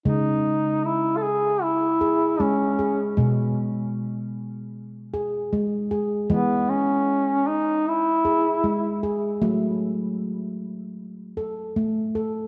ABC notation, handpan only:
X:1
M:4/4
L:1/8
Q:"Swing 16ths" 1/4=77
K:C#m
V:1 name="Handpan"
G,2 z3 G G, G | G,2 z3 G G, G | G,2 z3 G G, G | A,2 z3 A A, A |]
V:2 name="Handpan" clef=bass
C,8 | B,,8 | E,8 | F,8 |]